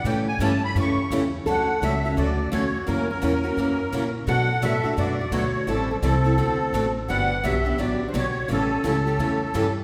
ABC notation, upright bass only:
X:1
M:4/4
L:1/8
Q:"Swing" 1/4=171
K:D
V:1 name="Upright bass" clef=bass
A,,2 G,,2 F,, z E,,2 | D,,2 C,,2 D,,2 E,,2 | F,,2 E,,2 F,,2 ^A,,2 | B,,2 A,, z F,,2 D,,2 |
A,,,2 =C,,2 D,,2 A,,,2 | G,,,2 B,,,2 A,,,2 B,,,2 | A,,,2 C,,2 E,,2 G,,2 |]